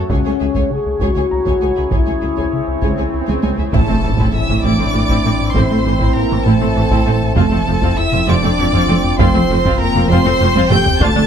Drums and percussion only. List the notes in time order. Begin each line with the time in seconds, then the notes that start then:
0.10 taiko
0.55 taiko
1.01 taiko
1.46 taiko
1.91 taiko
2.37 taiko
2.82 taiko
3.28 taiko high
3.43 taiko high
3.58 taiko low
3.73 taiko
4.18 taiko
4.49 taiko mid
4.79 taiko mid
5.09 taiko
5.55 taiko
6.00 taiko
6.31 taiko mid
6.61 taiko mid
6.91 taiko
7.36 taiko
7.82 taiko
8.12 taiko mid
8.43 taiko mid
8.73 taiko
9.19 taiko
9.64 taiko
9.95 taiko mid
10.26 taiko mid
10.55 taiko high
10.70 taiko low-mid
10.85 taiko low
11.00 taiko